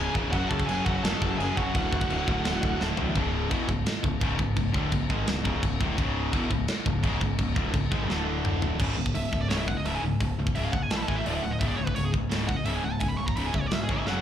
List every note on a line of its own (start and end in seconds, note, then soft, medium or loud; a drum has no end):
0.00 0.14 C#2 medium
0.00 0.15 G#2 medium
0.00 0.16 C#3 loud
0.00 0.12 G#4 medium
0.00 0.12 G#5 loud
0.15 0.26 E1 medium
0.15 0.32 C#2 medium
0.15 0.32 G#2 medium
0.15 0.32 C#3 medium
0.15 kick medium
0.32 0.44 F#1 medium
0.32 0.67 F#2 medium
0.32 0.67 C#3 loud
0.32 0.69 F#3 loud
0.32 0.51 F#4 medium
0.32 0.49 F#5 loud
0.32 kick loud
0.32 china medium
0.49 0.62 C#2 loud
0.49 0.68 A4 medium
0.49 0.66 A5 medium
0.49 kick medium
0.60 kick loud
0.67 0.79 F#1 medium
0.67 0.86 F#2 medium
0.67 0.86 C#3 loud
0.67 0.87 F#3 loud
0.67 0.86 G#4 medium
0.67 0.85 G#5 medium
0.67 china medium
0.85 0.97 F#1 medium
0.85 1.02 F#2 medium
0.85 1.03 C#3 medium
0.85 1.03 F#3 medium
0.85 1.05 F#4 medium
0.85 1.03 F#5 medium
0.85 kick loud
1.03 1.14 F#1 medium
1.03 1.38 F#2 medium
1.03 1.39 C#3 loud
1.03 1.39 F#3 loud
1.03 1.40 A4 medium
1.03 1.38 A5 medium
1.03 snare loud
1.03 china medium
1.21 1.32 F#1 medium
1.21 kick medium
1.38 1.50 F#1 medium
1.38 1.56 F#2 medium
1.38 1.56 C#3 medium
1.38 1.57 F#3 loud
1.38 1.58 G#4 medium
1.38 1.57 G#5 loud
1.38 china medium
1.57 1.68 F#1 loud
1.57 1.73 F#2 medium
1.57 1.74 C#3 medium
1.57 1.74 F#3 medium
1.57 2.81 F#4 medium
1.57 2.80 F#5 medium
1.57 kick medium
1.75 1.86 D1 medium
1.75 2.11 D2 medium
1.75 2.11 A2 loud
1.75 2.11 D3 loud
1.75 kick loud
1.75 china medium
1.92 2.03 D1 medium
1.92 kick medium
2.01 kick loud
2.10 2.22 D1 medium
2.10 2.28 D2 medium
2.10 2.29 A2 medium
2.10 2.29 D3 medium
2.10 china medium
2.28 2.39 D1 medium
2.28 2.45 D2 medium
2.28 2.46 A2 medium
2.28 2.46 D3 loud
2.28 kick medium
2.45 2.56 D1 medium
2.45 2.78 D2 medium
2.45 2.80 A2 loud
2.45 2.80 D3 loud
2.45 snare loud
2.45 china medium
2.63 2.74 D1 medium
2.63 kick medium
2.80 2.92 D1 medium
2.80 2.96 D2 medium
2.80 2.96 A2 medium
2.80 2.97 D3 medium
2.80 snare medium
2.97 3.09 B1 medium
2.97 3.14 D2 medium
2.97 3.14 A2 loud
2.97 3.15 D3 loud
2.97 floor tom medium
3.15 3.48 C#1 loud
3.15 3.50 C#2 medium
3.15 3.50 G#2 loud
3.15 3.51 C#3 loud
3.15 kick loud
3.15 crash medium
3.50 3.67 E1 medium
3.50 3.68 E2 medium
3.50 3.68 B2 medium
3.50 3.68 E3 loud
3.50 kick loud
3.50 crash medium
3.69 3.85 C#1 medium
3.69 3.83 C#2 medium
3.69 3.83 G#2 medium
3.69 kick medium
3.86 snare loud
3.86 crash medium
4.03 4.20 C#1 medium
4.03 4.18 C#2 medium
4.03 4.18 G#2 medium
4.03 kick loud
4.21 4.38 C#1 loud
4.21 4.37 C#2 medium
4.21 4.38 G#2 loud
4.21 4.39 C#3 medium
4.21 kick loud
4.21 crash medium
4.39 4.55 C#1 medium
4.39 4.53 C#2 medium
4.39 4.53 G#2 medium
4.39 kick medium
4.56 4.73 C#1 medium
4.56 4.70 C#2 medium
4.56 4.71 G#2 medium
4.56 kick medium
4.56 crash medium
4.72 4.91 D1 medium
4.72 4.91 D2 medium
4.72 4.91 A2 medium
4.72 4.91 D3 loud
4.72 kick loud
4.91 5.08 C#1 medium
4.91 5.06 C#2 medium
4.91 5.06 G#2 medium
4.91 kick medium
4.91 crash medium
5.09 5.26 G#1 medium
5.09 5.26 G#2 medium
5.09 5.27 D#3 medium
5.09 5.27 G#3 medium
5.09 kick loud
5.26 5.44 C#1 medium
5.26 5.41 C#2 medium
5.26 5.41 G#2 medium
5.26 snare loud
5.26 crash medium
5.43 5.62 C#1 loud
5.43 5.61 C#2 loud
5.43 5.61 G#2 loud
5.43 5.62 C#3 loud
5.43 kick loud
5.62 5.79 C#1 medium
5.62 5.77 C#2 medium
5.62 5.76 G#2 medium
5.62 kick loud
5.62 crash medium
5.80 5.97 D1 medium
5.80 5.97 D2 loud
5.80 5.98 A2 loud
5.80 5.98 D3 medium
5.80 kick loud
5.98 6.31 C#1 medium
5.98 6.32 C#2 loud
5.98 6.32 G#2 medium
5.98 6.33 C#3 loud
5.98 kick loud
5.98 crash medium
6.32 6.49 E1 medium
6.32 6.50 E2 medium
6.32 6.50 B2 medium
6.32 6.51 E3 loud
6.32 kick loud
6.32 crash medium
6.51 6.67 C#1 medium
6.51 6.65 C#2 medium
6.51 6.65 G#2 medium
6.51 kick medium
6.68 snare loud
6.68 crash medium
6.86 7.02 C#1 medium
6.86 7.00 C#2 medium
6.86 7.00 G#2 medium
6.86 kick medium
7.03 7.20 C#1 loud
7.03 7.20 C#2 loud
7.03 7.20 G#2 medium
7.03 7.21 C#3 loud
7.03 kick loud
7.03 crash medium
7.21 7.38 C#1 medium
7.21 7.35 C#2 medium
7.21 7.36 G#2 medium
7.21 kick medium
7.38 7.55 C#1 medium
7.38 7.53 C#2 medium
7.38 7.54 G#2 medium
7.38 kick medium
7.38 crash medium
7.56 7.72 D1 loud
7.56 7.72 D2 medium
7.56 7.73 A2 medium
7.56 7.74 D3 medium
7.56 kick loud
7.73 7.90 C#1 medium
7.73 7.88 C#2 medium
7.73 7.88 G#2 medium
7.73 kick loud
7.73 crash medium
7.91 8.08 G#1 medium
7.91 8.08 G#2 loud
7.91 8.09 D#3 medium
7.91 8.09 G#3 loud
7.91 kick loud
8.09 8.76 D1 medium
8.09 8.78 D2 medium
8.09 8.79 A2 medium
8.09 8.79 D3 loud
8.09 snare medium
8.45 mid tom medium
8.62 floor tom loud
8.78 8.92 C#1 medium
8.78 8.96 C#2 medium
8.78 8.96 G#2 medium
8.78 8.96 C#3 medium
8.78 kick loud
8.78 crash medium
8.96 9.09 C#1 medium
8.96 9.13 C#2 medium
8.96 9.13 G#2 medium
9.06 kick medium
9.14 9.27 C#1 medium
9.14 9.30 C#2 medium
9.14 9.31 G#2 medium
9.14 9.40 E5 medium
9.14 open hi-hat medium
9.32 9.44 C#1 medium
9.32 9.48 C#2 medium
9.32 9.48 G#2 medium
9.32 kick medium
9.42 9.49 D5 medium
9.49 9.74 C#1 medium
9.49 9.66 C#2 medium
9.49 9.67 G#2 medium
9.49 9.66 C#3 medium
9.49 9.58 C#5 medium
9.49 snare loud
9.49 open hi-hat medium
9.59 9.67 E5 medium
9.67 9.83 C#2 medium
9.67 9.84 G#2 medium
9.67 9.76 F#5 medium
9.67 kick medium
9.77 9.86 D#5 medium
9.84 9.97 C#1 medium
9.84 10.02 C#2 medium
9.84 10.02 G#2 medium
9.84 10.03 C#3 medium
9.84 9.94 E5 medium
9.84 open hi-hat medium
9.95 10.00 G#5 medium
10.02 10.15 C#1 medium
10.02 10.19 C#2 medium
10.02 10.20 G#2 medium
10.20 10.33 C#1 medium
10.20 10.37 C#2 medium
10.20 10.37 G#2 medium
10.20 kick medium
10.20 open hi-hat medium
10.38 10.50 C#1 medium
10.38 10.54 C#2 medium
10.38 10.55 G#2 medium
10.47 kick medium
10.55 10.68 C#1 medium
10.55 10.72 C#2 medium
10.55 10.72 G#2 medium
10.55 10.73 C#3 medium
10.55 10.64 E5 medium
10.55 open hi-hat medium
10.64 10.73 F5 medium
10.73 10.85 C#1 medium
10.73 10.89 C#2 medium
10.73 10.89 G#2 medium
10.73 10.82 F#5 loud
10.73 kick medium
10.82 10.91 G#5 medium
10.91 11.03 A1 medium
10.91 11.07 A2 medium
10.91 11.08 E3 medium
10.91 11.08 A3 loud
10.91 10.96 A5 medium
10.91 snare loud
10.91 open hi-hat medium
10.96 11.03 B5 medium
11.03 11.08 A5 medium
11.08 11.21 A1 medium
11.08 11.25 A2 medium
11.08 11.26 E3 loud
11.08 11.26 A3 medium
11.08 11.17 G#5 medium
11.08 kick medium
11.16 11.26 E5 medium
11.25 11.38 D1 loud
11.25 11.42 D2 medium
11.25 11.43 A2 medium
11.25 11.43 D3 medium
11.25 11.35 D5 medium
11.25 open hi-hat medium
11.35 11.44 E5 medium
11.43 11.56 D1 medium
11.43 11.60 D2 medium
11.43 11.60 A2 medium
11.43 11.52 F#5 medium
11.51 11.59 D#5 medium
11.60 11.73 C#1 loud
11.60 11.77 C#2 medium
11.60 11.78 G#2 medium
11.60 11.78 C#3 medium
11.60 11.68 E5 loud
11.60 kick loud
11.60 open hi-hat medium
11.68 11.76 D5 medium
11.77 11.91 C#1 medium
11.77 11.95 C#2 medium
11.77 11.95 G#2 medium
11.77 11.86 C#5 medium
11.86 11.95 B4 medium
11.86 kick medium
11.95 12.08 C#1 medium
11.95 12.13 C#2 medium
11.95 12.13 G#2 medium
11.95 12.04 C#5 medium
11.95 open hi-hat medium
12.05 12.10 G#4 medium
12.13 12.26 C#1 medium
12.13 12.30 C#2 medium
12.13 12.30 G#2 medium
12.13 kick medium
12.30 12.55 C#1 medium
12.30 12.48 C#2 medium
12.30 12.49 G#2 medium
12.30 12.49 C#3 loud
12.30 snare loud
12.30 open hi-hat medium
12.48 12.64 C#2 medium
12.48 12.65 G#2 medium
12.48 12.56 F#5 loud
12.48 kick medium
12.56 12.65 D#5 medium
12.65 12.78 C#1 medium
12.65 12.82 C#2 medium
12.65 12.83 G#2 medium
12.65 12.83 C#3 medium
12.65 12.75 E5 medium
12.65 open hi-hat medium
12.75 12.84 G#5 loud
12.83 12.96 C#1 medium
12.83 13.00 C#2 medium
12.83 13.00 G#2 medium
12.83 12.92 F#5 loud
12.92 13.00 A5 loud
13.00 13.14 C#1 medium
13.00 13.18 C#2 medium
13.00 13.18 G#2 medium
13.00 13.10 G#5 medium
13.00 kick medium
13.00 open hi-hat medium
13.08 13.17 B5 medium
13.17 13.31 C#1 medium
13.17 13.34 C#2 medium
13.17 13.35 G#2 medium
13.17 13.26 C#6 loud
13.27 13.36 A#5 medium
13.27 kick medium
13.35 13.49 C#1 medium
13.35 13.52 C#2 medium
13.35 13.52 G#2 medium
13.35 13.53 C#3 medium
13.35 13.46 B5 medium
13.35 open hi-hat medium
13.46 13.54 G#5 medium
13.53 13.66 C#1 medium
13.53 13.69 C#2 medium
13.53 13.69 G#2 medium
13.53 13.61 E5 loud
13.53 kick medium
13.61 13.66 C#5 medium
13.66 13.87 C#2 medium
13.66 13.87 G#2 medium
13.66 13.72 D5 medium
13.71 13.84 B1 medium
13.71 13.81 E5 medium
13.71 snare loud
13.71 open hi-hat medium
13.83 13.90 G#4 medium
13.88 14.01 G#1 medium
13.88 14.06 C#2 medium
13.88 14.06 G#2 medium
13.88 14.06 C#3 medium
13.88 13.99 C#5 medium
13.88 kick medium
13.99 14.10 E5 medium
14.06 14.19 F#1 medium
14.06 14.21 F#2 medium
14.06 14.21 C#3 medium
14.06 14.21 F#3 medium
14.06 14.21 F#5 loud
14.06 snare medium